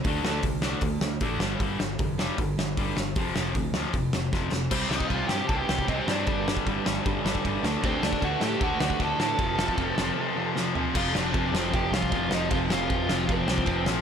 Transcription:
<<
  \new Staff \with { instrumentName = "Lead electric guitar" } { \time 4/4 \key f \major \tempo 4 = 154 r1 | r1 | r1 | \key f \mixolydian <c' c''>8 <ees' ees''>8 <f' f''>8 <g' g''>8 <a' a''>16 <g' g''>8. <ees' ees''>16 <c' c''>16 <d' d''>8~ |
<d' d''>8 r2. r8 | <c' c''>8 <d' d''>8 <fis' fis''>8 <g' g''>8 <fis' fis''>4 <a' a''>8 <a' a''>8~ | <a' a''>2. r4 | <f' f''>8 <d' d''>4 <c' c''>8 <g' g''>8 <f' f''>4 <ees' ees''>8 |
<f' f''>8 <f' f''>4. <c' c''>4. r8 | }
  \new Staff \with { instrumentName = "Distorted electric guitar" } { \clef bass \time 4/4 \key f \major <d a d'>8 <d a d'>8 <d a>8 <d a d'>8 <d a>8 <d a>8 <d a d'>8 <g, d g>8 | <g, d g>8 <g, d>8 <g, d>8 <g, d g>8 <g, d>8 <g, d>8 <g, d g>8 <g, d>8 | <f, c f>8 <f, c f>8 <f, c>8 <f, c f>8 <f, c>8 <f, c>8 <f, c f>8 <f, c>8 | \key f \mixolydian <c g c'>8 <c g c'>8 <c g c'>8 <c g c'>8 <c g c'>8 <c g c'>8 <c g c'>8 <c g c'>8 |
<g, d g>8 <g, d g>8 <g, d g>8 <g, d g>8 <g, d g>8 <g, d g>8 <g, d g>8 <d a d'>8 | <d a d'>8 <d a d'>8 <d a d'>8 <d a d'>8 <d a d'>8 <d a d'>8 <d a d'>8 <d a d'>8 | <f, c f>8 <f, c f>8 <f, c f>8 <f, c f>8 <f, c f>8 <f, c f>8 <f, c f>8 <f, c f>8 | <f, c f>8 <f, c f>8 <f, c f>8 <f, c f>8 <f, c f>8 <f, c f>8 <f, c f>8 <f, c f>8 |
<f, c f>8 <f, c f>8 <f, c f>8 <f, c f>8 <f, c f>8 <f, c f>8 <f, c f>8 <f, c f>8 | }
  \new Staff \with { instrumentName = "Distorted electric guitar" } { \clef bass \time 4/4 \key f \major <d a d'>8 <d a d'>8 <d a>8 <d a d'>8 <d a>8 <d a>8 <d a d'>8 <g, d g>8 | <g, d g>8 <g, d>8 <g, d>8 <g, d g>8 <g, d>8 <g, d>8 <g, d g>8 <g, d>8 | <f, c f>8 <f, c f>8 <f, c>8 <f, c f>8 <f, c>8 <f, c>8 <f, c f>8 <f, c>8 | \key f \mixolydian <c g c'>8 <c g c'>8 <c g c'>8 <c g c'>8 <c g c'>8 <c g c'>8 <c g c'>8 <c g c'>8 |
<g, d g>8 <g, d g>8 <g, d g>8 <g, d g>8 <g, d g>8 <g, d g>8 <g, d g>8 <d a d'>8 | <d a d'>8 <d a d'>8 <d a d'>8 <d a d'>8 <d a d'>8 <d a d'>8 <d a d'>8 <d a d'>8 | <f, c f>8 <f, c f>8 <f, c f>8 <f, c f>8 <f, c f>8 <f, c f>8 <f, c f>8 <f, c f>8 | <f, c f>8 <f, c f>8 <f, c f>8 <f, c f>8 <f, c f>8 <f, c f>8 <f, c f>8 <f, c f>8 |
<f, c f>8 <f, c f>8 <f, c f>8 <f, c f>8 <f, c f>8 <f, c f>8 <f, c f>8 <f, c f>8 | }
  \new Staff \with { instrumentName = "Overdriven electric guitar" } { \clef bass \time 4/4 \key f \major r1 | r1 | r1 | \key f \mixolydian r1 |
r1 | <d a d'>8 <d a d'>8 <d a d'>8 <d a d'>8 <d a d'>8 <d a d'>8 <d a d'>8 <d a d'>8 | <f, c f>8 <f, c f>8 <f, c f>8 <f, c f>8 <f, c f>8 <f, c f>8 <f, c f>8 <f, c f>8 | <f, c f>4. <f, c f>2~ <f, c f>8 |
<f, c f>4. <f, c f>2~ <f, c f>8 | }
  \new Staff \with { instrumentName = "Picked electric bass" } { \clef bass \time 4/4 \key f \major d,8 d,8 c,4 d,8 d,8 a,,8 g,,8 | g,,8 g,,8 f,,4 g,,8 g,,8 g,,8 g,,8 | f,,8 f,,8 d,4 f,,8 f,,8 f,,8 f,,8 | \key f \mixolydian c,8 c,8 c,8 g,8 c,8 c,8 c,8 g,8 |
g,,4 g,,8 g,,8 g,8 g,,8 g,,8 d,8 | d,8 d,8 d,8 a,8 d,8 d,8 d,8 a,8 | f,,4 f,,8 f,,8 r2 | f,,8 f,,8 f,8 f,,8 f,,8 c,8 f,,8 f,,8 |
f,,8 f,,8 f,8 f,,8 f,,8 c,8 f,,8 bes,,8 | }
  \new DrumStaff \with { instrumentName = "Drums" } \drummode { \time 4/4 <hho bd>8 sn8 <hho bd>8 sn8 <hho bd>8 sn8 <hho bd>8 sn8 | <hho bd>8 sn8 <hho bd>8 sn8 <hho bd>8 sn8 <hho bd>8 sn8 | <hho bd>8 sn8 <hho bd>8 sn8 <hho bd>8 sn8 <bd sn>8 sn8 | <cymc bd>8 sn16 bd16 <bd cymr>8 sn8 <bd cymr>8 sn16 bd16 <bd cymr>8 sn8 |
<bd cymr>8 sn16 bd16 <bd cymr>8 sn8 <bd cymr>8 sn16 bd16 <bd cymr>8 sn8 | <bd cymr>8 sn16 bd16 <bd cymr>8 sn8 <bd cymr>8 sn16 bd16 <bd cymr>8 sn8 | <bd cymr>8 sn16 bd16 <bd cymr>8 sn8 r4 sn8 tomfh8 | <cymc bd>8 sn8 <bd cymr>8 sn8 <bd cymr>8 sn16 bd16 <bd cymr>8 sn8 |
<bd cymr>8 sn8 <bd cymr>8 sn8 <bd cymr>8 sn16 bd16 <bd cymr>8 sn8 | }
>>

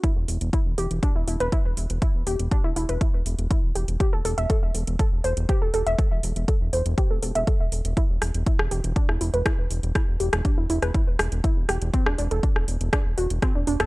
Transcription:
<<
  \new Staff \with { instrumentName = "Synth arpeggio sound" } { \time 4/4 \key a \dorian \tempo 4 = 121 e'16 r8. e'16 r16 g'16 r16 d'16 e'16 e'16 b'16 e'16 r8. | e'16 r16 g'16 r16 d'16 e'16 e'16 b'16 e'16 r8. e'16 r16 g'16 r16 | g'16 a'16 a'16 e''16 a'16 r8. a'16 r16 c''16 r16 g'16 a'16 a'16 e''16 | a'16 r8. a'16 r16 c''16 r16 g'16 a'16 a'16 e''16 a'16 r8. |
e'16 r8. e'16 r16 g'16 r16 d'16 e'16 e'16 b'16 e'16 r8. | e'16 r16 g'16 r16 d'16 e'16 e'16 b'16 e'16 r8. e'16 r16 g'16 r16 | c'16 d'16 d'16 a'16 d'16 r8. d'16 r16 fis'16 r16 c'16 d'16 d'16 a'16 | }
  \new Staff \with { instrumentName = "Analog synth bass" } { \clef bass \time 4/4 \key a \dorian r16 e,,16 e,,16 e,,16 r16 e,,16 e,,16 e,,16 r16 e,,16 e,,16 e,,16 r16 e,,16 e,,16 e,,16 | r16 e,,16 e,,16 e,,16 r16 e,,16 e,,16 e,,16 r16 e,,16 e,,16 e,,16 r16 e,,16 e,,16 e,,16 | r16 e,,16 e,,16 e,,16 r16 e,,16 e,,16 e,,16 r16 e,,16 e,,16 e,,16 r16 e,,16 e,,16 e,,16 | r16 e,,16 e,,16 e,,16 r16 e,,16 e,,16 e,,16 r16 e,,16 e,,16 e,,16 r16 e,,16 e,,16 e,,16 |
r16 e,,16 e,,16 e,,16 r16 e,,16 e,,16 e,,16 r16 e,,16 e,,16 e,,16 r16 e,,16 e,,16 e,,16 | r16 e,,16 e,,16 e,,16 r16 e,,16 e,,16 e,,16 r16 e,,16 e,,16 e,,16 r16 e,,16 e,,16 e,,16 | r16 e,,16 e,,16 e,,16 r16 e,,16 e,,16 e,,16 r16 e,,16 e,,16 e,,16 r16 e,,16 e,,16 e,,16 | }
  \new DrumStaff \with { instrumentName = "Drums" } \drummode { \time 4/4 <hh bd>8 hho16 hh16 <hh bd>8 hho16 hh16 <hh bd>8 hho16 hh16 <hh bd>8 hho16 hh16 | <hh bd>8 hho16 hh16 <hh bd>8 hho16 hh16 <hh bd>8 hho16 hh16 <hh bd>8 hho16 hh16 | <hh bd>8 hho16 hh16 <hh bd>8 hho16 hh16 <hh bd>8 hho16 hh16 <hh bd>8 hho16 hh16 | <hh bd>8 hho16 hh16 <hh bd>8 hho16 hh16 <hh bd>8 hho16 hh16 <hh bd>8 hho16 hh16 |
<hh bd>8 <hho ss>16 hh16 <hh bd>16 ss16 hho16 hh16 <hh bd>16 ss16 hho16 hh16 <hh bd ss>8 hho16 hh16 | <hh bd ss>8 hho16 <hh ss>16 <hh bd>8 hho16 <hh ss>16 <hh bd>8 <hho ss>16 hh16 <hh bd>8 <hho ss>16 hh16 | <hh bd>16 ss16 hho16 hh16 <hh bd>16 ss16 hho16 hh16 <hh bd ss>8 hho16 hh16 <hh bd ss>8 hho16 <hh ss>16 | }
>>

